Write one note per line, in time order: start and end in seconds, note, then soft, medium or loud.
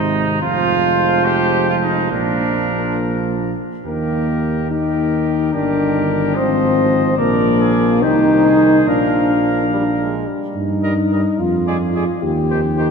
0.00 0.39 G#1 soft
0.00 0.38 C3 soft
0.00 0.38 G#3 soft
0.00 0.39 D#4 medium
0.00 0.25 C5 soft
0.41 2.08 F1 medium
0.41 2.08 F3 medium
0.41 2.08 G#3 soft
0.41 1.26 F4 medium
0.41 2.07 C5 medium
1.25 1.68 G4 medium
1.69 1.75 F4 medium
1.82 2.11 D#4 medium
2.11 3.54 A#1 soft
2.11 3.54 F3 soft
2.11 3.53 A#3 soft
2.11 2.97 D4 soft
2.11 3.53 A#4 soft
3.84 5.50 D#2 soft
3.84 4.67 D#3 soft
3.84 4.67 A#3 medium
3.84 4.67 G4 soft
3.84 4.67 A#4 soft
4.70 5.52 D#3 soft
4.70 5.55 D#4 medium
4.70 5.52 G4 soft
4.70 5.52 A#4 soft
5.53 6.38 G1 soft
5.53 6.34 D#3 soft
5.53 6.36 D4 medium
5.53 6.37 G4 soft
5.53 6.36 A#4 soft
6.35 7.17 G#1 medium
6.35 7.16 F3 soft
6.35 7.16 C4 medium
6.35 7.17 C5 soft
6.35 7.16 D#5 soft
7.17 8.04 A#1 medium
7.17 8.04 F3 medium
7.17 8.04 A#3 medium
7.17 7.61 A#4 medium
7.17 8.04 D5 soft
7.59 8.02 G#4 soft
8.02 8.87 C2 medium
8.02 8.86 D#3 medium
8.02 8.88 D#4 medium
8.02 8.46 G4 soft
8.02 8.89 C5 soft
8.45 8.89 G#4 soft
8.87 10.25 A#1 soft
8.87 9.64 F3 soft
8.87 10.27 D4 medium
8.87 10.28 A#4 soft
8.87 10.28 F5 soft
9.71 9.84 G3 soft
9.99 10.29 G#3 soft
10.27 10.55 G3 soft
10.55 11.25 G2 medium
10.55 11.41 D#4 medium
10.83 10.93 G3 soft
10.83 10.93 A#4 soft
10.83 10.93 D#5 soft
11.11 11.21 G3 soft
11.11 11.21 A#4 soft
11.11 11.22 D#5 soft
11.39 12.09 F2 medium
11.39 12.22 F4 medium
11.67 11.77 G#3 soft
11.67 11.77 G#4 soft
11.67 11.77 D5 soft
11.94 12.05 G#3 soft
11.94 12.04 G#4 soft
11.94 12.05 D5 soft
12.22 12.91 D#2 medium
12.22 12.91 G4 medium
12.49 12.60 D#3 soft
12.49 12.59 G4 soft
12.49 12.60 C5 soft
12.77 12.88 D#3 soft
12.77 12.87 G4 soft
12.77 12.87 C5 soft